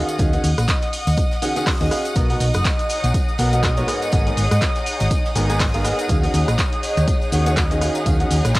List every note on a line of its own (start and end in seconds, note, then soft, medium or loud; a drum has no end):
0.00 0.17 D#3 medium
0.00 0.17 C#4 medium
0.00 0.17 F#4 medium
0.00 0.17 G#4 medium
0.00 8.60 D#5 medium
0.00 0.17 F5 medium
0.00 8.60 F#5 medium
0.00 8.60 D#6 medium
0.09 closed hi-hat soft
0.09 tambourine medium
0.09 shaker soft
0.18 0.36 D#2 medium
0.18 0.31 D#3 medium
0.18 0.31 C#4 medium
0.18 0.31 F#4 medium
0.18 0.31 G#4 medium
0.18 0.31 F5 medium
0.18 kick loud
0.18 closed hi-hat medium
0.18 tambourine medium
0.18 shaker soft
0.33 0.47 D#3 medium
0.33 0.47 C#4 medium
0.33 0.47 F#4 medium
0.33 0.47 G#4 medium
0.33 0.47 F#5 medium
0.33 closed hi-hat soft
0.33 tambourine soft
0.33 shaker soft
0.44 0.53 D#2 loud
0.44 open hi-hat loud
0.44 tambourine medium
0.44 shaker medium
0.58 0.64 A#1 loud
0.58 cross-stick medium
0.58 closed hi-hat medium
0.58 closed hi-hat soft
0.58 tambourine medium
0.58 shaker soft
0.68 kick loud
0.68 snare loud
0.68 clap loud
0.68 closed hi-hat medium
0.68 tambourine medium
0.68 shaker soft
0.82 snare soft
0.82 closed hi-hat soft
0.82 tambourine soft
0.82 shaker soft
0.93 open hi-hat loud
0.93 tambourine medium
0.93 shaker medium
1.07 1.14 D#2 loud
1.07 open hi-hat medium
1.07 tambourine medium
1.07 shaker soft
1.17 kick loud
1.17 closed hi-hat medium
1.17 tambourine medium
1.17 shaker soft
1.31 snare soft
1.31 tambourine soft
1.31 shaker soft
1.42 1.53 D#3 medium
1.42 1.53 C#4 medium
1.42 1.53 F#4 medium
1.42 1.53 G#4 medium
1.42 1.53 F#5 medium
1.42 open hi-hat loud
1.42 tambourine medium
1.42 shaker medium
1.56 1.70 D#3 medium
1.56 1.70 C#4 medium
1.56 1.70 F#4 medium
1.56 1.70 G#4 medium
1.56 1.70 F#5 loud
1.56 snare soft
1.56 closed hi-hat soft
1.56 tambourine medium
1.56 shaker soft
1.66 kick loud
1.66 cross-stick medium
1.66 snare loud
1.66 clap loud
1.66 closed hi-hat medium
1.66 open hi-hat medium
1.66 shaker soft
1.80 1.87 D#2 loud
1.80 1.90 D#3 medium
1.80 1.90 C#4 medium
1.80 1.90 F#4 medium
1.80 1.90 G#4 medium
1.80 1.90 D#5 loud
1.80 closed hi-hat soft
1.80 tambourine soft
1.80 shaker soft
1.91 2.13 C#4 medium
1.91 2.13 F#4 medium
1.91 2.13 G#4 medium
1.91 2.13 F5 medium
1.91 cross-stick medium
1.91 open hi-hat loud
1.91 tambourine medium
1.91 shaker medium
2.05 closed hi-hat soft
2.05 tambourine medium
2.05 shaker soft
2.15 2.33 B1 loud
2.15 2.28 B2 medium
2.15 2.28 B3 medium
2.15 8.60 D#4 medium
2.15 2.28 F#4 medium
2.15 2.28 A#4 medium
2.15 2.28 D#5 loud
2.15 kick loud
2.15 closed hi-hat medium
2.15 tambourine medium
2.15 shaker soft
2.30 2.44 B2 medium
2.30 2.44 B3 medium
2.30 2.44 F#4 medium
2.30 2.44 A#4 medium
2.30 2.44 F#5 medium
2.30 open hi-hat medium
2.30 tambourine soft
2.30 shaker soft
2.40 2.49 B1 loud
2.40 open hi-hat loud
2.40 tambourine medium
2.40 shaker medium
2.54 2.61 F#1 medium
2.54 cross-stick medium
2.54 closed hi-hat soft
2.54 tambourine medium
2.54 shaker soft
2.65 8.60 G#4 loud
2.65 kick loud
2.65 snare loud
2.65 clap loud
2.65 closed hi-hat medium
2.65 tambourine medium
2.65 shaker soft
2.79 closed hi-hat soft
2.79 tambourine soft
2.79 shaker soft
2.89 open hi-hat loud
2.89 tambourine medium
2.89 shaker medium
2.94 8.60 C#5 medium
3.04 3.10 B1 loud
3.04 closed hi-hat soft
3.04 tambourine medium
3.04 shaker soft
3.14 kick loud
3.14 closed hi-hat medium
3.14 tambourine medium
3.14 shaker soft
3.28 tambourine soft
3.28 shaker soft
3.38 3.82 B1 medium
3.38 3.50 B2 medium
3.38 3.50 B3 medium
3.38 3.50 F#4 medium
3.38 3.50 A#4 medium
3.38 3.50 F#5 medium
3.38 open hi-hat loud
3.38 tambourine medium
3.38 shaker medium
3.53 3.67 B2 medium
3.53 3.67 B3 medium
3.53 3.67 F#4 medium
3.53 3.67 A#4 medium
3.53 3.67 F#5 loud
3.53 closed hi-hat soft
3.53 tambourine medium
3.53 shaker soft
3.63 kick loud
3.63 cross-stick medium
3.63 snare loud
3.63 clap loud
3.63 closed hi-hat medium
3.63 tambourine medium
3.63 shaker soft
3.77 3.86 G#2 medium
3.77 3.86 B3 medium
3.77 3.86 F#4 medium
3.77 3.86 A#4 medium
3.77 3.86 C#5 loud
3.77 closed hi-hat soft
3.77 tambourine soft
3.77 shaker soft
3.88 4.10 G#2 medium
3.88 4.10 B3 medium
3.88 4.10 G#4 medium
3.88 4.10 A#4 medium
3.88 4.10 F#5 medium
3.88 cross-stick medium
3.88 open hi-hat loud
3.88 tambourine medium
3.88 shaker medium
4.02 closed hi-hat soft
4.02 tambourine medium
4.02 shaker soft
4.12 4.29 G#1 loud
4.12 4.25 G#2 medium
4.12 4.25 B3 medium
4.12 4.25 G#4 medium
4.12 4.25 A#4 medium
4.12 4.25 F#5 loud
4.12 kick loud
4.12 closed hi-hat medium
4.12 tambourine medium
4.12 shaker soft
4.27 4.40 G#2 medium
4.27 4.40 B3 medium
4.27 4.40 G#4 medium
4.27 4.40 A#4 medium
4.27 4.40 G#5 medium
4.27 closed hi-hat soft
4.27 tambourine soft
4.27 shaker soft
4.37 4.46 G#1 medium
4.37 open hi-hat loud
4.37 tambourine medium
4.37 shaker medium
4.51 4.58 G#2 loud
4.51 cross-stick medium
4.51 closed hi-hat medium
4.51 closed hi-hat soft
4.51 tambourine medium
4.51 shaker soft
4.61 kick loud
4.61 snare loud
4.61 clap loud
4.61 closed hi-hat medium
4.61 tambourine medium
4.61 shaker soft
4.75 snare soft
4.75 closed hi-hat soft
4.75 tambourine soft
4.75 shaker soft
4.86 open hi-hat loud
4.86 tambourine medium
4.86 shaker medium
5.00 5.07 G#1 loud
5.00 open hi-hat medium
5.00 tambourine medium
5.00 shaker soft
5.11 kick loud
5.11 closed hi-hat medium
5.11 tambourine medium
5.11 shaker soft
5.25 snare soft
5.25 tambourine soft
5.25 shaker soft
5.35 5.90 G#1 loud
5.35 5.46 G#2 medium
5.35 5.46 B3 medium
5.35 5.46 G#4 medium
5.35 5.46 A#4 medium
5.35 5.46 G#5 medium
5.35 open hi-hat loud
5.35 tambourine medium
5.35 shaker medium
5.50 5.63 G#2 medium
5.50 5.63 B3 medium
5.50 5.63 G#4 medium
5.50 5.63 A#4 medium
5.50 5.63 G#5 loud
5.50 snare soft
5.50 closed hi-hat soft
5.50 tambourine medium
5.50 shaker soft
5.59 kick loud
5.59 cross-stick medium
5.59 snare loud
5.59 clap loud
5.59 closed hi-hat medium
5.59 open hi-hat medium
5.59 shaker soft
5.74 5.83 G#2 medium
5.74 5.83 B3 medium
5.74 5.83 G#4 medium
5.74 5.83 A#4 medium
5.74 5.83 F5 loud
5.74 closed hi-hat soft
5.74 tambourine soft
5.74 shaker soft
5.84 6.07 B3 medium
5.84 6.07 G#4 medium
5.84 6.07 A#4 medium
5.84 6.07 F#5 medium
5.84 cross-stick medium
5.84 open hi-hat loud
5.84 tambourine medium
5.84 shaker medium
5.99 closed hi-hat soft
5.99 tambourine medium
5.99 shaker soft
6.09 6.26 D#2 medium
6.09 6.21 D#3 medium
6.09 6.21 C#4 medium
6.09 6.21 F#4 medium
6.09 6.21 G#4 medium
6.09 6.21 F5 medium
6.09 kick loud
6.09 closed hi-hat medium
6.09 tambourine medium
6.09 shaker soft
6.23 6.37 D#3 medium
6.23 6.37 C#4 medium
6.23 6.37 F#4 medium
6.23 6.37 G#4 medium
6.23 6.37 F#5 medium
6.23 open hi-hat medium
6.23 tambourine soft
6.23 shaker soft
6.34 6.43 D#2 loud
6.34 open hi-hat loud
6.34 tambourine medium
6.34 shaker medium
6.48 6.55 A#1 loud
6.48 cross-stick medium
6.48 closed hi-hat medium
6.48 tambourine medium
6.48 shaker soft
6.58 kick loud
6.58 snare loud
6.58 clap loud
6.58 closed hi-hat medium
6.58 tambourine medium
6.58 shaker soft
6.72 closed hi-hat soft
6.72 tambourine soft
6.72 shaker soft
6.83 open hi-hat loud
6.83 tambourine medium
6.83 shaker medium
6.97 7.04 D#2 loud
6.97 closed hi-hat medium
6.97 tambourine medium
6.97 shaker soft
7.08 kick loud
7.08 closed hi-hat medium
7.08 tambourine medium
7.08 shaker soft
7.22 tambourine soft
7.22 shaker soft
7.32 7.87 D#2 medium
7.32 7.43 D#3 medium
7.32 7.43 C#4 medium
7.32 7.43 F#4 medium
7.32 7.43 G#4 medium
7.32 7.43 F#5 medium
7.32 open hi-hat loud
7.32 tambourine medium
7.32 shaker medium
7.46 7.60 D#3 medium
7.46 7.60 C#4 medium
7.46 7.60 F#4 medium
7.46 7.60 G#4 medium
7.46 7.60 F#5 loud
7.46 closed hi-hat soft
7.46 tambourine medium
7.46 shaker soft
7.57 kick loud
7.57 cross-stick medium
7.57 snare loud
7.57 clap loud
7.57 closed hi-hat medium
7.57 tambourine medium
7.57 shaker soft
7.71 7.80 D#3 medium
7.71 7.80 C#4 medium
7.71 7.80 F#4 medium
7.71 7.80 G#4 medium
7.71 7.80 D#5 loud
7.71 closed hi-hat soft
7.71 tambourine soft
7.71 shaker soft
7.81 8.04 D#3 medium
7.81 8.04 C#4 medium
7.81 8.04 F#4 medium
7.81 8.04 G#4 medium
7.81 8.04 F5 medium
7.81 cross-stick medium
7.81 open hi-hat loud
7.81 tambourine medium
7.81 shaker medium
7.95 closed hi-hat soft
7.95 tambourine medium
7.95 shaker soft
8.06 8.23 D#2 loud
8.06 8.18 D#3 medium
8.06 8.18 C#4 medium
8.06 8.18 F#4 medium
8.06 8.18 G#4 medium
8.06 8.18 F5 loud
8.06 kick loud
8.06 closed hi-hat medium
8.06 tambourine medium
8.06 tambourine loud
8.06 shaker soft
8.20 8.34 D#3 medium
8.20 8.34 C#4 medium
8.20 8.34 F#4 medium
8.20 8.34 G#4 medium
8.20 8.34 F#5 medium
8.20 closed hi-hat soft
8.20 tambourine soft
8.20 shaker soft
8.31 8.40 D#2 loud
8.31 open hi-hat loud
8.31 tambourine medium
8.31 shaker medium
8.45 8.51 A#1 medium
8.45 cross-stick medium
8.45 closed hi-hat soft
8.45 closed hi-hat medium
8.45 tambourine medium
8.45 shaker soft
8.55 kick loud
8.55 snare loud
8.55 clap loud
8.55 closed hi-hat medium
8.55 tambourine medium
8.55 shaker soft